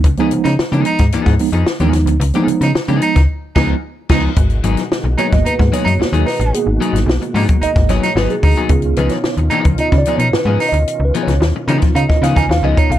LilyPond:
<<
  \new Staff \with { instrumentName = "Baritone saxophone" } { \time 4/4 \key gis \dorian \tempo 4 = 111 r8. dis'16 r8 dis'8 r2 | r8. dis'16 r8 dis'8 r8 dis'8 r8 dis'8 | r4. dis'16 r16 dis'16 r8 dis'16 r8 dis'8~ | dis'16 r4 r16 dis'16 r16 dis'16 r8 dis'16 r8 dis'8 |
r4. dis'16 r16 dis'16 r8 dis'16 r8 dis'8 | r4. dis'16 r16 dis'16 r8 dis'16 r8 dis'8 | }
  \new Staff \with { instrumentName = "Tine electric piano" } { \time 4/4 \key gis \dorian << { r16 <eis gis b dis'>8. r16 <eis gis b dis'>8 r16 <b dis'>16 r16 <eis gis b dis'>16 dis'16 r16 <eis gis b dis'>8. | r16 <eis gis b dis'>8. r16 <eis gis b dis'>8 r8. <eis gis b dis'>8 r8 <eis gis b dis'>8 | r4. cis''16 dis''16 b'8 cis''4 b'8 | gis'16 dis'4 r8. dis''8 cis''8 b'16 gis'8 fis'16 |
gis'8 b'16 cis''8 r8. \tuplet 3/2 { dis''8 d''8 r8 b'4 dis''8~ } | \tuplet 3/2 { dis''8 b'8 cis''8~ } cis''16 r8. eis''16 dis''16 eis''16 gis''16 eis''16 dis''16 cis''16 eis''16 | } \\ { r1 | r1 | r4. <ais b fis'>4. <ais b fis'>8 r8 | <ais b fis'>1 |
<b dis' eis'>4. r8 <b dis' eis'>8 r4. | r4. <b dis' eis'>2~ <b dis' eis'>8 | } >> }
  \new Staff \with { instrumentName = "Clean electric guitar" } { \time 4/4 \key gis \dorian r16 <eis b dis' gis'>16 r8. <eis b dis' gis'>16 r8 <eis b dis' gis'>16 r8 <eis b dis' gis'>16 r16 <eis b dis' gis'>16 r8 | r16 <eis b dis' gis'>16 r8. <eis b dis' gis'>16 r4 <eis b dis' gis'>8 r8 <eis b dis' gis'>8 | r8 <fis b dis' gis'>16 r8. <fis b dis' gis'>16 r8. <fis b dis' gis'>16 r8 <fis b dis' gis'>16 r8 | r8 <fis b dis' gis'>16 r8. <fis b dis' gis'>16 r8. <fis b dis' gis'>16 r16 <fis b dis' gis'>16 r8 <fis b dis' gis'>16 |
r8 <eis b dis' gis'>16 r8. <eis b dis' gis'>16 r8. <eis b dis' gis'>16 r8 <eis b dis' gis'>16 r8 | r8 <eis b dis' gis'>16 r8. <eis b dis' gis'>16 r8. <eis b dis' gis'>16 r8 <eis b dis' gis'>16 r8 | }
  \new Staff \with { instrumentName = "Tonewheel organ" } { \time 4/4 \key gis \dorian r1 | r1 | <b, gis fis'>1~ | <b, gis fis'>1 |
<cis' eis'>1~ | <cis' eis'>1 | }
  \new Staff \with { instrumentName = "Tonewheel organ" } { \clef bass \time 4/4 \key gis \dorian r1 | r1 | dis1~ | dis1~ |
dis1~ | dis1 | }
  \new Staff \with { instrumentName = "FM bass" } { \clef bass \time 4/4 \key gis \dorian cis,16 r16 cis16 cis16 cis16 cis16 r16 gis,16 gis,16 gis,16 r16 eis,16 r16 dis,16 dis,16 d,16 | cis,16 r16 cis16 cis16 cis16 cis16 r16 cis,16 r8 cis,8 r8 cis,8 | gis,,8 gis,,16 r8 b,,16 r16 gis,,16 gis,16 gis,16 r16 fis,16 dis,16 dis,16 r16 a,,16 | r16 gis,,16 r16 gis,,16 b,,16 r16 gis,16 r16 gis,,16 gis,,8 r16 gis,,16 r16 d,16 r16 |
cis,8 cis,16 r8 dis,16 r16 cis,16 cis16 cis16 r16 b,16 gis,16 gis,16 r16 d,16 | r16 cis,16 r16 cis,16 dis,16 r16 cis16 r16 cis16 r16 cis16 cis,16 dis,16 cis,16 r16 b,,16 | }
  \new DrumStaff \with { instrumentName = "Drums" } \drummode { \time 4/4 <hh bd>16 hh16 hh16 <hh sn>16 sn16 hh16 hh16 <hh bd sn>16 hh16 <hh bd sn>16 hho16 hh16 sn16 hh16 <hh sn>16 hh16 | hh16 hh16 hh16 <hh sn>16 sn16 hh16 hh16 <hh bd sn>16 r8 <cymc bd sn>8 r8 <cymc bd sn>8 | <hh bd>16 hh16 hh16 <hh sn>16 sn8 hh16 <hh bd sn>16 hh16 <bd sn>16 hh16 hh16 sn16 hh16 <hho sn>16 hh16 | hh8 hh16 <hh sn>16 sn16 hh16 hho16 <hh bd>16 hh16 <hh bd sn>16 <hh sn>16 <hh sn>16 sn16 hh16 <hho bd>16 hh16 |
<hh bd>16 hh16 hh16 <hh sn>16 sn16 hh16 hh16 <hh bd>16 hh16 <hh bd sn>16 hh16 hh16 sn8 <hho sn>16 hh16 | hh8 hh16 <hh sn>16 sn8 hh16 <hh bd sn>16 hh16 <bd sn>16 <hh sn>16 <hh bd sn>16 sn8 <hh bd>16 hh16 | }
>>